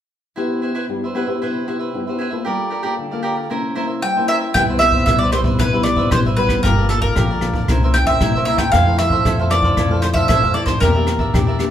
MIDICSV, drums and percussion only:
0, 0, Header, 1, 2, 480
1, 0, Start_track
1, 0, Key_signature, 0, "major"
1, 0, Tempo, 522193
1, 340, Time_signature, 4, 2, 24, 8
1, 10759, End_track
2, 0, Start_track
2, 0, Title_t, "Drums"
2, 4181, Note_on_c, 9, 37, 62
2, 4181, Note_on_c, 9, 42, 55
2, 4182, Note_on_c, 9, 36, 60
2, 4273, Note_off_c, 9, 36, 0
2, 4273, Note_off_c, 9, 37, 0
2, 4273, Note_off_c, 9, 42, 0
2, 4412, Note_on_c, 9, 37, 62
2, 4412, Note_on_c, 9, 42, 45
2, 4503, Note_off_c, 9, 37, 0
2, 4503, Note_off_c, 9, 42, 0
2, 4523, Note_on_c, 9, 36, 56
2, 4615, Note_off_c, 9, 36, 0
2, 4661, Note_on_c, 9, 36, 71
2, 4662, Note_on_c, 9, 37, 57
2, 4662, Note_on_c, 9, 42, 57
2, 4753, Note_off_c, 9, 36, 0
2, 4754, Note_off_c, 9, 37, 0
2, 4754, Note_off_c, 9, 42, 0
2, 4788, Note_on_c, 9, 42, 26
2, 4880, Note_off_c, 9, 42, 0
2, 4890, Note_on_c, 9, 37, 55
2, 4890, Note_on_c, 9, 42, 40
2, 4982, Note_off_c, 9, 37, 0
2, 4982, Note_off_c, 9, 42, 0
2, 5002, Note_on_c, 9, 36, 67
2, 5094, Note_off_c, 9, 36, 0
2, 5136, Note_on_c, 9, 37, 60
2, 5136, Note_on_c, 9, 42, 57
2, 5140, Note_on_c, 9, 36, 62
2, 5228, Note_off_c, 9, 37, 0
2, 5228, Note_off_c, 9, 42, 0
2, 5232, Note_off_c, 9, 36, 0
2, 5371, Note_on_c, 9, 37, 58
2, 5371, Note_on_c, 9, 42, 42
2, 5463, Note_off_c, 9, 37, 0
2, 5463, Note_off_c, 9, 42, 0
2, 5484, Note_on_c, 9, 36, 63
2, 5576, Note_off_c, 9, 36, 0
2, 5617, Note_on_c, 9, 37, 61
2, 5617, Note_on_c, 9, 42, 64
2, 5621, Note_on_c, 9, 36, 81
2, 5709, Note_off_c, 9, 37, 0
2, 5709, Note_off_c, 9, 42, 0
2, 5713, Note_off_c, 9, 36, 0
2, 5749, Note_on_c, 9, 42, 28
2, 5841, Note_off_c, 9, 42, 0
2, 5855, Note_on_c, 9, 42, 41
2, 5947, Note_off_c, 9, 42, 0
2, 5965, Note_on_c, 9, 37, 58
2, 5966, Note_on_c, 9, 36, 57
2, 6056, Note_off_c, 9, 37, 0
2, 6057, Note_off_c, 9, 36, 0
2, 6104, Note_on_c, 9, 36, 61
2, 6105, Note_on_c, 9, 37, 56
2, 6105, Note_on_c, 9, 42, 58
2, 6196, Note_off_c, 9, 36, 0
2, 6197, Note_off_c, 9, 37, 0
2, 6197, Note_off_c, 9, 42, 0
2, 6334, Note_on_c, 9, 37, 59
2, 6334, Note_on_c, 9, 42, 45
2, 6426, Note_off_c, 9, 37, 0
2, 6426, Note_off_c, 9, 42, 0
2, 6447, Note_on_c, 9, 36, 52
2, 6539, Note_off_c, 9, 36, 0
2, 6580, Note_on_c, 9, 37, 60
2, 6580, Note_on_c, 9, 42, 56
2, 6584, Note_on_c, 9, 36, 68
2, 6672, Note_off_c, 9, 37, 0
2, 6672, Note_off_c, 9, 42, 0
2, 6676, Note_off_c, 9, 36, 0
2, 6814, Note_on_c, 9, 37, 54
2, 6814, Note_on_c, 9, 42, 38
2, 6906, Note_off_c, 9, 37, 0
2, 6906, Note_off_c, 9, 42, 0
2, 6927, Note_on_c, 9, 36, 62
2, 7019, Note_off_c, 9, 36, 0
2, 7062, Note_on_c, 9, 37, 58
2, 7062, Note_on_c, 9, 42, 55
2, 7065, Note_on_c, 9, 36, 56
2, 7154, Note_off_c, 9, 37, 0
2, 7154, Note_off_c, 9, 42, 0
2, 7156, Note_off_c, 9, 36, 0
2, 7192, Note_on_c, 9, 42, 24
2, 7284, Note_off_c, 9, 42, 0
2, 7298, Note_on_c, 9, 37, 63
2, 7298, Note_on_c, 9, 42, 41
2, 7390, Note_off_c, 9, 37, 0
2, 7390, Note_off_c, 9, 42, 0
2, 7408, Note_on_c, 9, 36, 59
2, 7500, Note_off_c, 9, 36, 0
2, 7543, Note_on_c, 9, 37, 58
2, 7543, Note_on_c, 9, 42, 56
2, 7545, Note_on_c, 9, 36, 78
2, 7635, Note_off_c, 9, 37, 0
2, 7635, Note_off_c, 9, 42, 0
2, 7637, Note_off_c, 9, 36, 0
2, 7778, Note_on_c, 9, 42, 40
2, 7869, Note_off_c, 9, 42, 0
2, 7888, Note_on_c, 9, 36, 61
2, 7888, Note_on_c, 9, 37, 62
2, 7980, Note_off_c, 9, 36, 0
2, 7980, Note_off_c, 9, 37, 0
2, 8027, Note_on_c, 9, 36, 57
2, 8028, Note_on_c, 9, 37, 57
2, 8028, Note_on_c, 9, 42, 59
2, 8118, Note_off_c, 9, 36, 0
2, 8120, Note_off_c, 9, 37, 0
2, 8120, Note_off_c, 9, 42, 0
2, 8258, Note_on_c, 9, 37, 61
2, 8258, Note_on_c, 9, 42, 44
2, 8350, Note_off_c, 9, 37, 0
2, 8350, Note_off_c, 9, 42, 0
2, 8368, Note_on_c, 9, 36, 52
2, 8460, Note_off_c, 9, 36, 0
2, 8505, Note_on_c, 9, 36, 68
2, 8507, Note_on_c, 9, 37, 56
2, 8507, Note_on_c, 9, 42, 59
2, 8597, Note_off_c, 9, 36, 0
2, 8599, Note_off_c, 9, 37, 0
2, 8599, Note_off_c, 9, 42, 0
2, 8631, Note_on_c, 9, 42, 28
2, 8723, Note_off_c, 9, 42, 0
2, 8736, Note_on_c, 9, 37, 57
2, 8736, Note_on_c, 9, 42, 42
2, 8828, Note_off_c, 9, 37, 0
2, 8828, Note_off_c, 9, 42, 0
2, 8847, Note_on_c, 9, 36, 64
2, 8939, Note_off_c, 9, 36, 0
2, 8981, Note_on_c, 9, 37, 58
2, 8981, Note_on_c, 9, 42, 57
2, 8983, Note_on_c, 9, 36, 64
2, 9073, Note_off_c, 9, 37, 0
2, 9073, Note_off_c, 9, 42, 0
2, 9075, Note_off_c, 9, 36, 0
2, 9214, Note_on_c, 9, 37, 57
2, 9214, Note_on_c, 9, 42, 50
2, 9306, Note_off_c, 9, 37, 0
2, 9306, Note_off_c, 9, 42, 0
2, 9325, Note_on_c, 9, 36, 62
2, 9417, Note_off_c, 9, 36, 0
2, 9460, Note_on_c, 9, 37, 62
2, 9460, Note_on_c, 9, 42, 69
2, 9462, Note_on_c, 9, 36, 77
2, 9552, Note_off_c, 9, 37, 0
2, 9552, Note_off_c, 9, 42, 0
2, 9554, Note_off_c, 9, 36, 0
2, 9586, Note_on_c, 9, 42, 29
2, 9678, Note_off_c, 9, 42, 0
2, 9693, Note_on_c, 9, 42, 44
2, 9785, Note_off_c, 9, 42, 0
2, 9806, Note_on_c, 9, 36, 60
2, 9807, Note_on_c, 9, 37, 60
2, 9898, Note_off_c, 9, 36, 0
2, 9899, Note_off_c, 9, 37, 0
2, 9942, Note_on_c, 9, 37, 60
2, 9942, Note_on_c, 9, 42, 58
2, 9943, Note_on_c, 9, 36, 58
2, 10034, Note_off_c, 9, 37, 0
2, 10034, Note_off_c, 9, 42, 0
2, 10035, Note_off_c, 9, 36, 0
2, 10174, Note_on_c, 9, 37, 56
2, 10174, Note_on_c, 9, 42, 46
2, 10266, Note_off_c, 9, 37, 0
2, 10266, Note_off_c, 9, 42, 0
2, 10286, Note_on_c, 9, 36, 53
2, 10378, Note_off_c, 9, 36, 0
2, 10424, Note_on_c, 9, 36, 74
2, 10428, Note_on_c, 9, 37, 60
2, 10428, Note_on_c, 9, 42, 52
2, 10516, Note_off_c, 9, 36, 0
2, 10520, Note_off_c, 9, 37, 0
2, 10520, Note_off_c, 9, 42, 0
2, 10656, Note_on_c, 9, 37, 57
2, 10656, Note_on_c, 9, 42, 42
2, 10748, Note_off_c, 9, 37, 0
2, 10748, Note_off_c, 9, 42, 0
2, 10759, End_track
0, 0, End_of_file